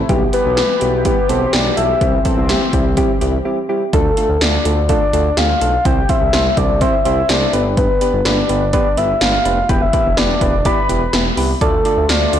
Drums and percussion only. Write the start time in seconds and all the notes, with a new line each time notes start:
0.09 kick, closed hi-hat
0.33 closed hi-hat
0.57 snare, closed hi-hat
0.81 closed hi-hat
1.05 kick, closed hi-hat
1.29 closed hi-hat
1.53 snare, closed hi-hat
1.77 closed hi-hat
2.01 kick, closed hi-hat
2.25 kick, closed hi-hat
2.49 snare, closed hi-hat
2.73 kick, closed hi-hat
2.97 kick, closed hi-hat
3.21 closed hi-hat
3.93 kick, closed hi-hat
4.17 closed hi-hat
4.41 snare, closed hi-hat
4.65 closed hi-hat
4.89 kick, closed hi-hat
5.13 closed hi-hat
5.37 snare, closed hi-hat
5.61 closed hi-hat
5.85 kick, closed hi-hat
6.09 kick, closed hi-hat
6.33 snare, closed hi-hat
6.57 kick, closed hi-hat
6.81 kick, closed hi-hat
7.05 closed hi-hat
7.29 snare, closed hi-hat
7.53 closed hi-hat
7.77 kick, closed hi-hat
8.01 closed hi-hat
8.25 snare, closed hi-hat
8.49 closed hi-hat
8.73 kick, closed hi-hat
8.97 closed hi-hat
9.21 snare, closed hi-hat
9.45 closed hi-hat
9.69 kick, closed hi-hat
9.93 kick, closed hi-hat
10.17 snare, closed hi-hat
10.41 kick, closed hi-hat
10.65 kick, closed hi-hat
10.89 closed hi-hat
11.13 snare, closed hi-hat
11.37 open hi-hat
11.61 kick, closed hi-hat
11.85 closed hi-hat
12.09 snare, closed hi-hat
12.33 closed hi-hat